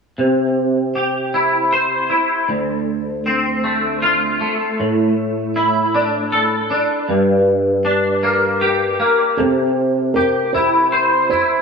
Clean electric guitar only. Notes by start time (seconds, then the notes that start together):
0.18 C3
0.95 G4
1.34 E4
1.73 C5
2.10 E4
2.49 D2
3.26 C4
3.64 A3
4.02 F4
4.41 A3
4.80 A2
5.56 E4
5.95 D4
6.32 A4
6.70 D4
7.09 G2
7.85 D4
8.23 A#3
8.61 G4
9.00 A#3
9.39 C3
10.16 G4
10.55 E4
10.92 C5
11.31 E4